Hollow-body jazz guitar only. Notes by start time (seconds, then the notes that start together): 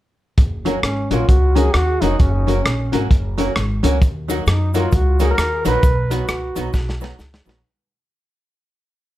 0.65 F#3 A#3 C#4 F#4
1.11 F#3 A#3 C#4 F#4
1.55 F#3 A#3 C#4 F#4
2.01 F#3 A#3 C#4 F#4
2.47 F#3 A#3 C#4 F#4
2.92 F#3 A#3 C#4 F#4
3.38 F#3 A#3 C#4 F#4
3.83 F#3 A#3 C#4 F#4
4.28 F#3 A#3 D#4 F#4
4.74 F#3 A#3 D#4 F#4
5.20 F#3 A#3 D#4 F#4
5.65 F#3 A#3 D#4 F#4
6.10 F#3 B3 D#4 F#4
6.56 F#3 B3 D#4 F#4
7.01 F#3 B3 D#4 F#4
7.46 F#3 B3 D#4 F#4